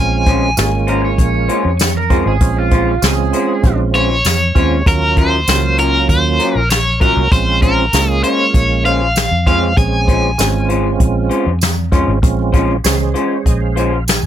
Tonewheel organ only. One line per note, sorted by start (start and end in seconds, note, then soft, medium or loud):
0.00 0.50 G#3 medium
0.00 0.50 C4 medium
0.00 0.50 C#4 medium
0.00 0.50 F4 medium
0.57 1.65 G#3 medium
0.57 1.65 A#3 medium
0.57 1.65 C#4 medium
0.57 1.65 F4 medium
2.10 2.37 G#3 medium
2.10 2.37 C4 medium
2.10 2.37 C#4 medium
2.10 2.37 F4 loud
2.41 2.95 G#3 medium
2.41 2.95 C4 medium
2.41 2.95 C#4 medium
2.41 2.95 F4 medium
3.02 4.10 G#3 medium
3.02 4.10 C4 medium
3.02 4.10 C#4 medium
3.02 4.10 F4 medium
4.55 4.82 G#3 medium
4.55 4.83 C4 medium
4.55 4.82 C#4 medium
4.55 4.82 F4 medium
4.86 5.40 F#3 medium
4.86 5.40 A#3 medium
4.86 5.40 C#4 medium
4.86 5.40 F4 medium
5.48 6.56 F#3 medium
5.48 6.56 A#3 medium
5.48 6.56 C#4 medium
5.48 6.56 F4 medium
7.01 7.28 F#3 medium
7.01 7.28 A#3 medium
7.01 7.28 C#4 medium
7.01 7.28 F#4 medium
7.32 7.86 G#3 medium
7.32 7.86 C4 medium
7.32 7.86 C#4 medium
7.32 7.86 F4 medium
7.94 9.02 G#3 medium
7.94 9.02 A#3 medium
7.94 9.01 C#4 medium
7.94 9.02 F4 medium
9.46 9.74 G#3 medium
9.46 9.74 C4 medium
9.46 9.74 C#4 medium
9.46 9.74 F4 medium
9.77 10.31 G#3 medium
9.77 10.31 C4 medium
9.77 10.31 C#4 medium
9.77 10.31 G#4 medium
10.38 11.47 G#3 medium
10.38 11.47 C4 medium
10.38 11.47 C#4 medium
10.38 11.47 F4 medium
11.92 12.19 G#3 medium
11.92 12.19 C4 medium
11.92 12.19 C#4 medium
11.92 12.19 F4 loud
12.22 12.77 G#3 medium
12.22 12.77 C4 medium
12.22 12.77 C#4 medium
12.22 12.77 F4 medium
12.84 13.93 G#3 medium
12.84 13.93 C#4 medium
12.84 13.93 G#4 medium
12.84 13.93 C5 medium
13.15 13.44 C#5 medium
13.45 13.60 D#5 medium
13.61 14.04 F5 medium
14.08 14.26 G#5 medium